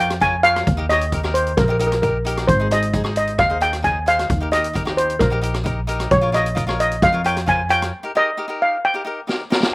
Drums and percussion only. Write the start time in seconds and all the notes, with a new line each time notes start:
0.10 cross-stick, closed hi-hat
0.21 kick, closed hi-hat
0.44 closed hi-hat
0.56 cross-stick, closed hi-hat
0.67 kick, closed hi-hat
0.90 cross-stick, closed hi-hat
1.01 closed hi-hat
1.12 kick, closed hi-hat
1.24 cross-stick
1.35 closed hi-hat
1.47 closed hi-hat
1.57 kick, cross-stick, closed hi-hat
1.80 closed hi-hat
1.92 cross-stick, closed hi-hat
2.03 kick, closed hi-hat
2.26 closed hi-hat
2.37 cross-stick, closed hi-hat
2.49 kick, closed hi-hat
2.71 cross-stick, closed hi-hat
2.82 closed hi-hat
2.94 kick, closed hi-hat
3.04 cross-stick
3.16 closed hi-hat
3.27 closed hi-hat
3.38 kick, cross-stick, closed hi-hat
3.61 closed hi-hat
3.73 cross-stick, closed hi-hat
3.84 kick, closed hi-hat
4.07 closed hi-hat
4.19 cross-stick, closed hi-hat
4.30 kick, closed hi-hat
4.53 cross-stick, closed hi-hat
4.64 closed hi-hat
4.75 kick, closed hi-hat
4.87 cross-stick
4.98 closed hi-hat
5.10 closed hi-hat
5.20 kick, cross-stick, closed hi-hat
5.43 closed hi-hat
5.54 cross-stick, closed hi-hat
5.66 kick, closed hi-hat
5.88 closed hi-hat
6.00 cross-stick, closed hi-hat
6.11 kick, closed hi-hat
6.34 cross-stick, closed hi-hat
6.46 closed hi-hat
6.57 kick, closed hi-hat
6.69 cross-stick
6.80 closed hi-hat
6.91 closed hi-hat
7.02 kick, cross-stick, closed hi-hat
7.25 closed hi-hat
7.36 cross-stick, closed hi-hat
7.48 kick, closed hi-hat
7.70 closed hi-hat
7.82 cross-stick, closed hi-hat
9.29 snare
9.52 snare
9.63 snare